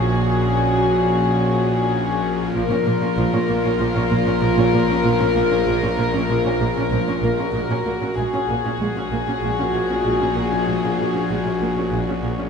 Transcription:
<<
  \new Staff \with { instrumentName = "Violin section" } { \time 4/4 \key ges \lydian \tempo 4 = 96 aes'1 | bes'1~ | bes'1~ | bes'4 aes'2.~ |
aes'2.~ aes'8 r8 | }
  \new Staff \with { instrumentName = "Viola section" } { \time 4/4 \key ges \lydian << { ges'1 | f'1~ | f'1 | ges'1~ |
ges'2.~ ges'8 r8 | } \\ { des'1 | f16 des'16 bes16 des'16 f16 des'16 bes16 des'16 f16 des'16 bes16 des'16 f16 des'16 bes16 des'16 | f16 des'16 bes16 des'16 f16 des'16 bes16 des'16 f16 des'16 bes16 des'16 f16 des'16 bes16 des'16 | aes16 des'16 bes16 des'16 aes16 des'16 bes16 des'16 aes16 des'16 bes16 des'16 aes16 des'16 bes16 des'16 |
aes16 des'16 bes16 des'16 aes16 des'16 bes16 des'16 aes16 des'16 bes16 des'16 aes16 des'16 bes16 des'16 | } >> }
  \new Staff \with { instrumentName = "Cello section" } { \clef bass \time 4/4 \key ges \lydian bes,1 | bes,16 bes,16 bes,16 bes,16 bes,16 bes,16 bes,16 bes,16 bes,16 bes,16 bes,16 bes,16 bes,16 bes,16 bes,16 bes,16 | bes,16 bes,16 bes,16 bes,16 bes,16 bes,16 bes,16 bes,16 bes,16 bes,16 bes,16 bes,16 bes,16 bes,16 bes,16 bes,16 | bes,16 bes,16 bes,16 bes,16 bes,16 bes,16 bes,16 bes,16 bes,16 bes,16 bes,16 bes,16 bes,16 bes,16 bes,16 bes,16 |
bes,16 bes,16 bes,16 bes,16 bes,16 bes,16 bes,16 bes,16 bes,16 bes,16 bes,16 bes,16 bes,16 bes,16 bes,16 bes,16 | }
  \new Staff \with { instrumentName = "Double bass section" } { \clef bass \time 4/4 \key ges \lydian bes,,1 | bes,,16 r16 bes,,16 r16 bes,,16 r16 bes,,16 r16 bes,,16 r16 bes,,16 r16 bes,,16 r16 bes,,16 r16 | bes,,16 r16 bes,,16 r16 bes,,16 r16 bes,,16 r16 bes,,16 r16 bes,,16 r16 bes,,16 r16 bes,,16 r16 | bes,,16 r16 bes,,16 r16 bes,,16 r16 bes,,16 r16 bes,,16 r16 bes,,16 r16 bes,,16 r16 bes,,16 r16 |
bes,,16 r16 bes,,16 r16 bes,,16 r16 bes,,16 r16 bes,,16 r16 bes,,16 r16 bes,,16 r16 bes,,16 r16 | }
  \new Staff \with { instrumentName = "Synth drone" } { \clef bass \time 4/4 \key ges \lydian bes,,1 | bes,,1~ | bes,,1 | bes,,1~ |
bes,,1 | }
>>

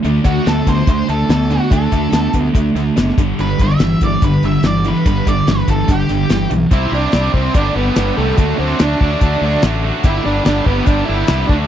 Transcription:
<<
  \new Staff \with { instrumentName = "Lead electric guitar" } { \time 4/4 \key g \major \tempo 4 = 144 r8 fis'8 a'8 c''8 c''8 a'8 a'8 fis'8 | a'4. r2 r8 | b'8 e''4 d''8 b'8 e''8 d''8 b'8 | b'8 d''8 b'8 a'8 g'4. r8 |
e'8 d'4 c'8 d'8 b4 a8 | a8 c'8 d'2 r4 | e'8 d'8 d'8 b8 d'8 e'4 d'8 | }
  \new Staff \with { instrumentName = "Distorted electric guitar" } { \clef bass \time 4/4 \key g \major <d a>8 <d a>8 <d b>8 <d b>8 <d a>8 <d a>8 <d b>8 <d b>8 | <d a>8 <d a>8 <d b>8 <d b>8 <d a>8 <d a>8 <d b>8 <g, d>8 | <g, d>8 <g, d>8 <g, e>8 <g, e>8 <g, d>8 <g, d>8 <g, e>8 <g, e>8 | <g, d>8 <g, d>8 <g, e>8 <g, e>8 <g, d>8 <g, d>8 <g, e>8 <g, e>8 |
<c g c' e' g'>8 <c g c' e' g'>8 <c g c' e' g'>8 <c g c' e' g'>8 <g, d g b d' g'>8 <g, d g b d' g'>8 <g, d g b d' g'>8 <g, d g b d' g'>8 | <d fis a d' fis'>8 <d fis a d' fis'>8 <d fis a d' fis'>8 <d fis a d' fis'>8 <d fis a d' fis'>8 <d fis a d' fis'>8 <d fis a d' fis'>8 <d fis a d' fis'>8 | <g, d g b d' g'>8 <g, d g b d' g'>8 <g, d g b d' g'>8 <g, d g b d' g'>8 <g, d g b d' g'>8 <g, d g b d' g'>8 <g, d g b d' g'>8 <d fis a d' fis'>8 | }
  \new Staff \with { instrumentName = "Distorted electric guitar" } { \clef bass \time 4/4 \key g \major <d a d'>1 | <d a d'>2.~ <d a d'>8 <g, d g>8~ | <g, d g>2.~ <g, d g>8 <g, d g>8~ | <g, d g>2.~ <g, d g>8 r8 |
r1 | r1 | r1 | }
  \new Staff \with { instrumentName = "Overdriven electric guitar" } { \clef bass \time 4/4 \key g \major <d a>8 <d a>8 <d b>8 <d b>8 <d a>8 <d a>8 <d b>8 <d b>8 | <d a>8 <d a>8 <d b>8 <d b>8 <d a>8 <d a>8 <d b>8 <g, d>8 | <g, d>8 <g, d>8 <g, e>8 <g, e>8 <g, d>8 <g, d>8 <g, e>8 <g, e>8 | <g, d>8 <g, d>8 <g, e>8 <g, e>8 <g, d>8 <g, d>8 <g, e>8 <g, e>8 |
<c g c'>8 <c g c'>8 <c g c'>8 <c g c'>8 <g, d g>8 <g, d g>8 <g, d g>8 <g, d g>8 | <d a d'>8 <d a d'>8 <d a d'>8 <d a d'>8 <d a d'>8 <d a d'>8 <d a d'>8 <d a d'>8 | <g, d g>8 <g, d g>8 <g, d g>8 <g, d g>8 <g, d g>8 <g, d g>8 <g, d g>8 <d a d'>8 | }
  \new Staff \with { instrumentName = "Fingered electric bass" } { \clef bass \time 4/4 \key g \major d,8 d,8 d,8 d,8 d,8 d,8 d,4 | d,8 d,8 d,8 d,8 d,8 d,8 fis,,8 g,,8 | g,,8 g,,8 g,,8 g,,8 g,,8 g,,8 g,,4 | g,,8 g,,8 g,,8 g,,8 g,,8 g,,8 g,,8 b,,8 |
c,8 c,8 c,8 c,8 g,,8 g,,8 g,,8 c,8 | d,8 d,8 d,8 d,8 d,8 d,8 a,,4 | g,,8 g,,8 g,,8 g,,8 g,,8 g,,8 c,8 d,8 | }
  \new DrumStaff \with { instrumentName = "Drums" } \drummode { \time 4/4 hh8 <hh bd>8 <hh sn>8 <hh bd>8 <hh bd>8 hh8 <hh sn>16 sn16 hh8 | <hh bd>8 <hh bd>8 <hh sn>8 <hh bd>8 <hh bd>8 <hh sn>8 <hh sn>16 sn16 <hh bd>8 | hh8 <hh bd>8 <hh sn>8 <hh bd>8 <hh bd>8 hh8 <hh sn>8 hh8 | <hh bd>8 <hh bd>8 <hh sn>8 <hh bd>8 <hh bd>8 <hh sn>8 <hh sn>8 hh8 |
<hh bd>8 sn8 <hh sn>8 bd8 <hh bd>4 <hh sn>4 | <hh bd>4 <hh sn>8 bd8 <hh bd>4 <hh sn>4 | <hh bd>4 <hh sn>8 bd8 <hh bd>4 <hh sn>8 bd8 | }
>>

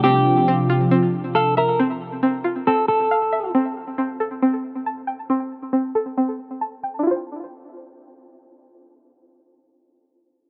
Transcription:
<<
  \new Staff \with { instrumentName = "Clean electric guitar" } { \time 4/4 \key d \minor \tempo 4 = 137 g'2 r4 a'8 bes'8 | r2 a'8 a'4. | r1 | r1 |
r1 | r1 | }
  \new Staff \with { instrumentName = "Synth pluck" } { \time 4/4 \key d \minor c'4 c'8 f'8 c'4 f''8 e''8 | c'4 c'8 f'8 c'4 f''8 e''8 | c'4 c'8 a'8 c'4 a''8 g''8 | c'4 c'8 a'8 c'4 a''8 g''8 |
<d' e' f' c''>1~ | <d' e' f' c''>1 | }
  \new Staff \with { instrumentName = "Analog synth pad" } { \time 4/4 \key d \minor <c f d' f'>1 | r1 | r1 | r1 |
r1 | r1 | }
>>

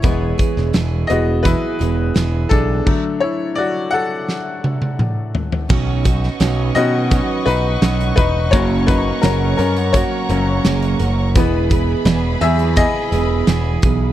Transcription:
<<
  \new Staff \with { instrumentName = "String section" } { \time 4/4 \key b \major \tempo 4 = 85 << { r1 | r1 | cis'''1~ | cis'''1 |
b''1 | } \\ { r1 | r1 | <b' dis'' fis''>1 | <cis'' fis'' ais''>1 |
<e' gis' b'>1 | } >> }
  \new Staff \with { instrumentName = "Upright piano" } { \time 4/4 \key b \major <e' cis''>4. <fis' dis''>8 <e' b'>4. <d' a'>8~ | <d' a'>8 <e' cis''>8 <fis' d''>8 <a' fis''>2 r8 | r4. <fis' dis''>4 <dis' b'>4 <dis' b'>8 | <fis' cis''>8 <dis' b'>8 <cis' ais'>8 <cis' ais'>8 <fis' cis''>4. r8 |
r4. <gis' e''>8 <gis' dis''>2 | }
  \new Staff \with { instrumentName = "Upright piano" } { \clef bass \time 4/4 \key b \major <e gis b>8 r4 <e gis b>8 r2 | <d fis a>4. r2 r8 | r4. <dis b cis'>2~ <dis b cis'>8 | <fis ais cis'>8 r2 <fis ais cis'>8 r4 |
<e gis b>4. r2 r8 | }
  \new Staff \with { instrumentName = "Steel-string acoustic guitar" } { \time 4/4 \key b \major <e b e' gis'>8 <b e' gis'>8 <e b e' gis'>8 <b e' gis'>8 <e b e' gis'>8 <b e' gis'>8 <e b e' gis'>8 <b e' gis'>8 | r1 | <b, fis cis' dis' fis'>8 <cis' dis' fis'>8 <b, fis cis' dis' fis'>8 <cis' dis' fis'>8 <fis cis' dis' fis'>8 <cis' dis' fis'>8 <b, fis cis' dis' fis'>8 <cis' dis' fis'>8 | <fis, cis fis ais cis' ais'>8 <fis ais cis' ais'>8 <fis, cis fis ais cis' ais'>8 <fis ais cis' ais'>8 <fis ais cis' ais'>8 <fis ais cis' ais'>8 <fis, cis fis ais cis' ais'>8 <fis ais cis' ais'>8 |
<e b e' gis'>8 <b e' gis'>8 <e b e' gis'>8 <b e' gis'>8 <e b e' gis'>8 <b e' gis'>8 <e b e' gis'>8 <b e' gis'>8 | }
  \new Staff \with { instrumentName = "Picked electric bass" } { \clef bass \time 4/4 \key b \major e,,8 r16 e,,16 e,,8 e,,8. r16 e,,8 e,,8 b,,8 | r1 | b,,4 b,,8 b,8. r16 b,,8 b,,8 e,,8 | fis,,4 fis,,8 fis,8. r16 fis,,8 fis,,8 fis,,8 |
e,,4 e,,8 e,8. r16 e,,8 e,,8 b,,8 | }
  \new DrumStaff \with { instrumentName = "Drums" } \drummode { \time 4/4 <hh bd>8 <hh bd>16 sn16 <hh sn>8 hh8 <hh bd>8 hh8 <hh sn>8 <hh bd>8 | <cymc bd>4 r4 sn8 tommh16 tommh16 toml8 tomfh16 tomfh16 | <cymc bd>8 <hh bd>16 sn16 <hh sn>8 hh8 <hh bd>8 hh8 <hh sn>16 hh16 <hh bd>8 | <hh bd>8 <hh bd>8 <hh sn>8 hh16 hh16 <hh bd>8 hh8 <hh sn>16 hh16 hh8 |
<hh bd>8 <hh bd>8 <hh sn>8 hh16 hh16 <hh bd>8 hh8 <hh sn>8 <hh bd>8 | }
>>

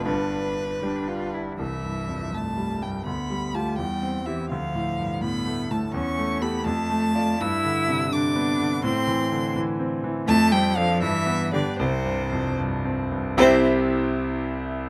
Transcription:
<<
  \new Staff \with { instrumentName = "Violin" } { \time 6/8 \key c \major \tempo 4. = 82 b'2~ b'8 r8 | e''4. a''4 g''8 | b''4 a''8 g''4 e''8 | f''4. b''4 a''8 |
cis'''4 b''8 a''4. | e'''4. d'''4. | c'''4. r4. | a''8 g''8 f''8 e''4 d''8 |
c''4. r4. | c''8 r2 r8 | }
  \new Staff \with { instrumentName = "Cello" } { \time 6/8 \key c \major d'4. d'8 f'8 e'8 | e4. a4 g8 | b4 a8 g4 e8 | f4. b4 a8 |
cis'4 b8 a4. | e'4. d'4. | c'4. r4. | a8 g8 f8 e4 d8 |
c4. r4. | c'8 r2 r8 | }
  \new Staff \with { instrumentName = "Grand piano" } { \clef bass \time 6/8 \key c \major <g,, g,>4. <g d' g'>4. | c,8 g,8 f,8 g,8 g8 g,8 | d,8 g8 <f' g'>8 e,8 c'8 <e' g'>8 | d,8 a,8 g,8 a,8 a8 a,8 |
e,8 a8 <g' a'>8 f,8 a8 <f' d''>8 | g,8 d8 c8 d8 b8 d8 | a,8 e8 d8 e8 c'8 e8 | f,8 c'8 <d' a'>8 g,8 b8 <d' g'>8 |
c,8 g,8 f,8 g,8 c'8 g,8 | <c, c c' e' g' e''>8 r2 r8 | }
>>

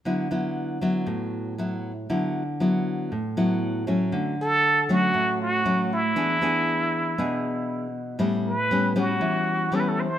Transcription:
<<
  \new Staff \with { instrumentName = "Muted trumpet" } { \time 4/4 \key d \major \tempo 4 = 118 r1 | r1 | r8 a'4 fis'4 fis'4 e'8~ | e'2.~ e'8 r8 |
r8 b'4 fis'4. a'32 b'32 a'16 c''8 | }
  \new Staff \with { instrumentName = "Nylon-string guitar" } { \time 4/4 \key d \major << { <fis b e'>8 <fis b e'>4 <fis b e'>4. <fis b e'>8 r8 | <fis b e'>8 r8 <fis b e'>4 r8 <fis b e'>4 <fis a cis'>8~ | <fis a cis'>8 r4 <fis a cis'>4. <fis a cis'>8 r8 | <b d' gis'>8 <b d' gis'>4. <b d' gis'>4. r8 |
<g b cis'>8 r8 <g b cis'>8 <g b cis'>4. <g b cis'>8 r8 | } \\ { d2 a,2 | d2 a,2 | d2 a,2 | e2 b,2 |
a,2 e2 | } >> }
>>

